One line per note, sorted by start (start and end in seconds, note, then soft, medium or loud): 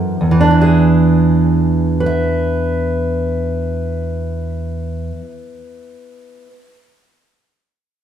0.00 0.20 F#2 soft
0.00 0.30 E3 soft
0.00 0.16 C#4 soft
0.00 0.16 E4 soft
0.00 0.16 A4 medium
0.21 5.10 E2 soft
0.31 5.20 E3 soft
0.41 5.30 D4 soft
0.51 2.00 E4 soft
0.61 2.06 G#4 soft
2.00 6.47 B4 medium
2.06 6.50 E5 medium